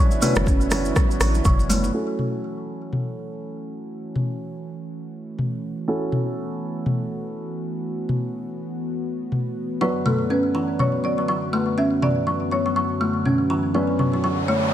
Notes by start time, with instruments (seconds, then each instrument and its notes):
Already playing: analog synth pad D3 B3 E4 C#5, kalimba F#3, felt piano C#4 D4 F#4 B4
0.11 muted conga, cabasa
0.22 kalimba A3, felt piano C#4 D4 F#4 B4, open hi-hat, mid tom, cabasa
0.35 fm bass F#1, cross-stick, high conga, low conga, cabasa
0.46 kalimba C#4, kick, muted conga, cabasa
0.61 cabasa
0.71 kalimba E3, felt piano C#4 D4 F#4 B4, cross-stick, open hi-hat, muted conga, high conga, cabasa
0.85 cabasa
0.96 kalimba F#3, kick, cross-stick, muted conga, high conga, cabasa
1.11 cabasa
1.20 fm bass A1, kalimba F#3, cross-stick, open hi-hat, cabasa
1.34 muted conga, cabasa
1.45 fm bass F#1, kalimba F#3, kick, mid tom, cabasa
1.59 muted conga, cabasa
1.69 kalimba A3, open hi-hat, high conga, cabasa
1.84 muted conga, cabasa
1.94 analog synth pad E3 A3 C#4 F#4, felt piano C#4 E4 F#4 A4
2.19 mid tom
2.93 mid tom
4.16 mid tom
5.39 mid tom
5.88 analog synth pad B3, felt piano C#4 E4 F#4 A4
6.12 mid tom
6.86 mid tom
8.09 mid tom
9.32 mid tom
9.81 analog synth pad F#2 D3 B4, kalimba F#3, felt piano F#3 B3 D4 F#4 B4, marimba B4
10.06 kalimba A3, marimba A4, mid tom
10.30 kalimba C#4, marimba B4
10.55 kalimba E3
10.79 kalimba F#3, marimba C#5, mid tom
11.04 kalimba F#3, marimba D5
11.18 kalimba F#3
11.28 kalimba F#3
11.53 kalimba A3
11.78 kalimba C#4, marimba E5
12.02 kalimba E3, marimba D5, mid tom
12.27 kalimba F#3
12.51 kalimba F#3, marimba C#5
12.66 kalimba F#3
12.76 kalimba F#3
13.01 kalimba A3
13.25 kalimba C#4, mid tom
13.50 kalimba E3
13.74 kalimba F#3, felt piano F#3 C#4 D4 F#4 B4, riser
13.99 kalimba F#3, mid tom
14.13 kalimba F#3
14.24 kalimba F#3
14.48 kalimba A3, marimba C#5